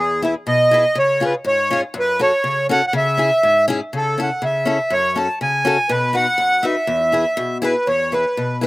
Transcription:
Already playing: steel-string acoustic guitar E2
0.00 accordion G#4
0.22 steel-string acoustic guitar E4 G#4 B4, accordion E5
0.47 steel-string acoustic guitar B2, accordion D#5
0.71 steel-string acoustic guitar E4 G#4 B4
0.95 steel-string acoustic guitar C#3, accordion C#5
1.20 steel-string acoustic guitar C#4 F4 G#4
1.25 accordion B4
1.45 steel-string acoustic guitar G#2, accordion C#5
1.70 steel-string acoustic guitar C#4 F4 G#4
1.94 steel-string acoustic guitar F#2
1.99 accordion B4
2.19 steel-string acoustic guitar C#4 F#4 A4, accordion C#5
2.44 steel-string acoustic guitar C#3
2.69 steel-string acoustic guitar C#4 F#4 A4, accordion F#5
2.87 accordion F#5
2.93 steel-string acoustic guitar C#3, accordion E5
3.17 steel-string acoustic guitar C#4 E4 G#4
3.43 steel-string acoustic guitar G#2
3.68 steel-string acoustic guitar C#4 E4 G#4
3.93 steel-string acoustic guitar C#3, accordion A4
4.18 steel-string acoustic guitar C#4 E4 A4
4.22 accordion F#5
4.42 steel-string acoustic guitar C#3, accordion E5
4.65 steel-string acoustic guitar C#4 E4 A4
4.90 steel-string acoustic guitar F#2, accordion C#5
5.16 steel-string acoustic guitar C#4 F#4 A4, accordion A5
5.41 steel-string acoustic guitar C#3, accordion G#5
5.65 steel-string acoustic guitar C#4 F#4 A4
5.89 steel-string acoustic guitar B2, accordion B4
6.13 steel-string acoustic guitar D#4 F#4 B4, accordion F#5
6.38 steel-string acoustic guitar F#2
6.62 steel-string acoustic guitar D#4 F#4 B4, accordion E5
6.87 steel-string acoustic guitar E2
7.12 steel-string acoustic guitar E4 G#4 B4
7.37 steel-string acoustic guitar B2
7.62 steel-string acoustic guitar E4 G#4 B4, accordion B4
7.87 steel-string acoustic guitar E2, accordion C#5
8.12 steel-string acoustic guitar E4 G#4 B4, accordion B4
8.37 steel-string acoustic guitar B2
8.61 steel-string acoustic guitar E4 G#4 B4

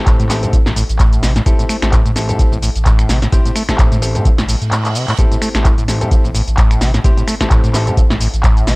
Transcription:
Already playing: sub bass A1, grand piano C4 E4 G4 A4
0.06 acid bass A2, kick, clap, closed hi-hat, shaker
0.20 acid bass A2, sub bass A2, closed hi-hat, shaker
0.29 acid bass A1, grand piano C4 E4 G4 A4, snare, clap, open hi-hat, shaker
0.43 acid bass A2, grand piano C4 E4 G4 A4, closed hi-hat, shaker
0.53 sub bass A1, acid bass A3, kick, closed hi-hat, shaker
0.66 acid bass A2, snare, shaker
0.76 acid bass A2, open hi-hat, shaker
0.89 sub bass A1, closed hi-hat, shaker
0.99 acid bass A2, kick, clap, closed hi-hat, shaker
1.13 closed hi-hat, shaker
1.23 sub bass A1, acid bass C3, snare, open hi-hat, shaker
1.36 acid bass A2, snare, closed hi-hat, shaker
1.46 sub bass A1, acid bass A2, grand piano C4 E4 G4 A4, kick, closed hi-hat, shaker
1.59 acid bass A2, closed hi-hat, shaker
1.69 acid bass A3, finger snap, open hi-hat, shaker
1.83 sub bass A1, grand piano C4 E4 G4 A4, finger snap, snare, closed hi-hat, shaker
1.92 acid bass A2, kick, clap, closed hi-hat, shaker
2.06 acid bass A2, sub bass A2, closed hi-hat, shaker
2.16 acid bass A1, grand piano C4 E4 G4 A4, snare, open hi-hat, shaker
2.29 acid bass A2, grand piano C4 E4 G4 A4, closed hi-hat, shaker
2.39 sub bass A1, acid bass A3, kick, closed hi-hat, shaker
2.52 acid bass A2, shaker
2.62 acid bass A2, open hi-hat, shaker
2.76 sub bass A1, closed hi-hat, shaker
2.85 acid bass A2, kick, clap, closed hi-hat, shaker
2.99 finger snap, closed hi-hat, shaker
3.09 sub bass A1, acid bass C3, snare, open hi-hat, shaker
3.22 acid bass A2, snare, closed hi-hat, shaker
3.32 sub bass A1, acid bass A2, grand piano C4 E4 G4 C5, kick, closed hi-hat, shaker
3.45 acid bass A2, closed hi-hat, shaker
3.55 acid bass A3, finger snap, open hi-hat, shaker
3.69 sub bass A1, grand piano C4 E4 G4 A4, finger snap, kick, snare, closed hi-hat, shaker
3.78 acid bass A2, kick, clap, closed hi-hat, shaker
3.92 acid bass A2, sub bass A2, closed hi-hat, shaker
4.02 acid bass A1, grand piano C4 E4 G4 A4, open hi-hat, shaker
4.15 acid bass A2, grand piano C4 E4 G4 A4, closed hi-hat, shaker
4.25 sub bass A1, acid bass A3, kick, closed hi-hat, reverse cymbal, shaker
4.38 acid bass A2, snare, closed hi-hat, shaker
4.49 acid bass A2, open hi-hat, shaker
4.62 sub bass A2, closed hi-hat, shaker
4.71 acid bass A2, clap, closed hi-hat, shaker
4.85 clap, closed hi-hat, shaker
4.95 acid bass C3, open hi-hat, shaker
5.08 acid bass A2, clap, closed hi-hat, shaker
5.18 sub bass A1, acid bass A2, grand piano C4 E4 G4 A4, kick, closed hi-hat, shaker
5.31 acid bass A2, closed hi-hat, shaker
5.42 acid bass A3, finger snap, open hi-hat, shaker
5.55 sub bass A1, grand piano C4 E4 G4 A4, finger snap, snare, closed hi-hat, shaker
5.64 acid bass A2, kick, clap, closed hi-hat, shaker
5.78 sub bass A2, acid bass A2, closed hi-hat, shaker
5.88 acid bass A1, grand piano C4 E4 G4 A4, snare, open hi-hat, shaker
6.01 acid bass A2, grand piano C4 E4 G4 A4, closed hi-hat, shaker
6.11 sub bass A1, acid bass A3, kick, closed hi-hat, shaker
6.24 acid bass A2, shaker
6.35 acid bass A2, open hi-hat, shaker
6.48 sub bass A1, closed hi-hat, shaker
6.57 acid bass A2, kick, clap, closed hi-hat, shaker
6.71 finger snap, closed hi-hat, shaker
6.81 sub bass A1, acid bass C3, snare, open hi-hat, shaker
6.94 acid bass A2, snare, closed hi-hat, shaker
7.04 sub bass A1, acid bass A2, grand piano C4 E4 G4 C5, kick, closed hi-hat, shaker
7.17 acid bass A2, closed hi-hat, shaker
7.28 acid bass A3, finger snap, open hi-hat, shaker
7.41 sub bass A1, grand piano C4 E4 G4 A4, finger snap, kick, snare, closed hi-hat, shaker
7.50 acid bass A2, kick, clap, closed hi-hat, shaker
7.64 acid bass A2, sub bass A2, closed hi-hat, shaker
7.74 acid bass A1, grand piano C4 E4 G4 A4, snare, clap, open hi-hat, shaker
7.87 acid bass A2, grand piano C4 E4 G4 A4, closed hi-hat, shaker
7.97 sub bass A1, acid bass A3, kick, closed hi-hat, shaker
8.10 acid bass A2, snare, shaker
8.21 acid bass A2, open hi-hat, shaker
8.34 sub bass A1, closed hi-hat, shaker
8.43 acid bass A2, kick, clap, closed hi-hat, shaker
8.57 closed hi-hat, shaker
8.67 sub bass A1, acid bass C3, snare, open hi-hat, shaker

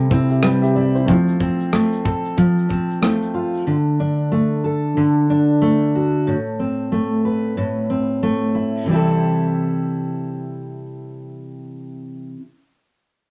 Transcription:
Already playing: steel-string acoustic guitar C3 G3 C4 E4 A4, grand piano G3 C4 E4 A4
0.10 steel-string acoustic guitar C4, grand piano E4 C5, kick, shaker
0.30 grand piano G4 E5, shaker
0.43 steel-string acoustic guitar G3, grand piano B4 G5, cross-stick, shaker
0.62 grand piano G4 E5, shaker
0.75 steel-string acoustic guitar E4, grand piano D5
0.95 grand piano E4 C5, shaker
1.06 steel-string acoustic guitar F3, grand piano A3 C4 F4, kick, shaker
1.10 grand piano C5
1.28 shaker
1.40 steel-string acoustic guitar C4, kick, shaker
1.60 shaker
1.72 steel-string acoustic guitar A3, cross-stick, shaker
1.92 shaker
2.05 steel-string acoustic guitar A4, kick
2.25 shaker
2.37 steel-string acoustic guitar F3, kick, shaker
2.58 shaker
2.69 steel-string acoustic guitar C4, kick
2.90 shaker
3.02 grand piano A3 C4 F4 C5, steel-string acoustic guitar A3, cross-stick, shaker
3.22 shaker
3.34 steel-string acoustic guitar F4
3.54 shaker
3.67 steel-string acoustic guitar D3
4.00 steel-string acoustic guitar D4
4.32 steel-string acoustic guitar A3
4.64 steel-string acoustic guitar A4
4.97 steel-string acoustic guitar D3
5.30 steel-string acoustic guitar D4
5.62 steel-string acoustic guitar A3
5.95 steel-string acoustic guitar F#4
6.27 steel-string acoustic guitar A2
6.59 steel-string acoustic guitar C4
6.92 steel-string acoustic guitar A3
7.25 steel-string acoustic guitar B4
7.57 steel-string acoustic guitar A2
7.90 steel-string acoustic guitar C4
8.23 steel-string acoustic guitar A3
8.55 steel-string acoustic guitar E4
8.85 steel-string acoustic guitar C3 E3 G3
8.91 steel-string acoustic guitar C4 E4 A4

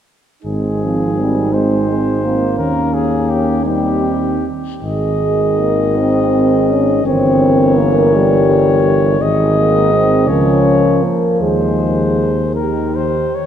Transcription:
0.43 tuba G#1, trombone G#3, euphonium C4, french horn section D#4, cornet G#4
0.85 trombone F3
1.21 trombone G3
1.53 trombone G#3, cornet C5
1.91 trombone G#3
2.25 trombone A#3
2.57 tuba D#2, euphonium C#4, french horn section C#4, cornet A#4
2.94 cornet G#4
3.30 cornet G4
3.65 trombone G3, french horn section C4, euphonium D#4, cornet G4
4.82 tuba G#1, trombone D#3, french horn section G#4, cornet D#5
5.21 euphonium G#3
5.59 euphonium A#3
5.97 euphonium C4
6.70 euphonium C#4
7.05 tuba G1, trombone E3, euphonium C4, french horn section A#4, cornet C#5
7.78 euphonium A#3
8.15 euphonium G3
9.21 tuba G#1, trombone D#3, french horn section G#4, cornet D#5
9.57 euphonium A#3
9.93 euphonium C4
10.27 tuba C#2, trombone F3, euphonium C#4, french horn section A#4, cornet C#5
11.03 euphonium A#3
11.39 tuba D#2, euphonium G#3, french horn section G#4, cornet C5
12.55 trombone D#3, french horn section G4, cornet A#4
12.95 cornet C5
13.34 cornet C#5

